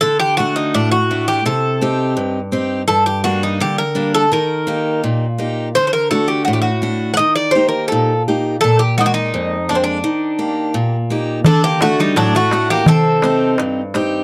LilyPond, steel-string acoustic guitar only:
\new Staff \with { instrumentName = "Steel-string acoustic guitar" } { \time 2/4 \tempo 4 = 84 d8 <a d' fis'>8 a,8 <a d' fis'>8 | c8 <c' ees' g'>8 g,8 <c' ees' g'>8 | g,8 <g bes d'>8 d8 <g bes d'>8 | ees8 <bes ees' g'>8 bes,8 <bes ees' g'>8 |
d8 <a d' fis'>8 a,8 <a d' fis'>8 | ees8 <bes ees' g'>8 bes,8 <bes ees' g'>8 | bes,8 <aes bes d''>8 f,8 <aes bes d'>8 | ees8 <bes g'>8 bes,8 <bes ees' g'>8 |
d8 <a d' fis'>8 a,8 <a d' fis'>8 | c8 <c' ees' g'>8 g,8 <c' ees' g'>8 | }